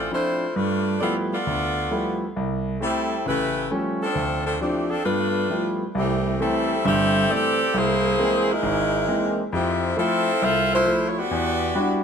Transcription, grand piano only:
0.11 F3 C4 D4 E4
0.56 G2
1.01 F3 G3 A3 B3 E4
1.47 D2
1.91 F3 G3 A3 B3 E4
2.36 C2
2.80 A3 C4 E4
3.26 A1 C#3
3.71 F3 G3 A3 C#4
4.15 D2
4.60 F3 C4 D4
5.05 G2 B3
5.50 F3 G3 A3 B3 E4
5.95 C2
6.40 E3 A3 C4
6.85 G1 G2
7.29 E3 A3 C4
7.74 C2
8.19 E3 G#3 A#3 C4
8.63 G#1
9.08 E3 G#3 A#3 C4
9.53 F2
9.97 F3 A3 E4
10.42 C2
10.86 F3 A3 E4
11.31 E2
11.75 G3 D4 E4 F#4

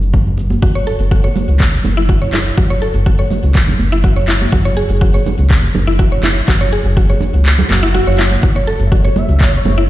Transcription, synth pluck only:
0.62 F#4
0.75 C#5
0.87 A4
1.11 F#4
1.24 C#5
1.97 E4
2.09 F#4
2.22 C#5
2.33 E4
2.57 F#4
2.70 C#5
2.82 A4
3.06 F#4
3.19 C#5
3.92 E4
4.04 F#4
4.16 C#5
4.28 E4
4.52 F#4
4.65 C#5
4.77 G#4
5.01 F#4
5.14 C#5
5.87 E4
5.99 F#4
6.12 C#5
6.24 E4
6.48 F#4
6.61 C#5
6.73 G#4
6.97 F#4
7.10 C#5
7.83 E4
7.95 F#4
8.07 C#5
8.19 E4
8.43 F#4
8.56 C#5
8.67 A4
8.92 F#4
9.05 C#5
9.78 E4

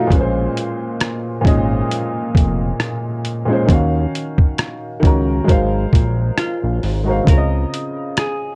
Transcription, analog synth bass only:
0.11 A#1
1.45 G#1
2.35 F1
3.69 D#2
5.03 C#2
5.49 G#1
5.93 A#1
6.63 A#1
6.83 G#1
7.27 C#2

